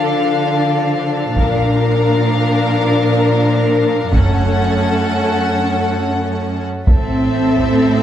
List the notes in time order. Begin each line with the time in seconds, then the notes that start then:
Already playing: D3 F3 D4 A4 F5
1.37 A#1 A#2 F3 D4 A#4 F5, taiko
4.12 F#1 F#2 A3 C#4 A4 F#5, taiko
6.87 A1 A2 A3 C4 A4 E5, taiko
7.56 taiko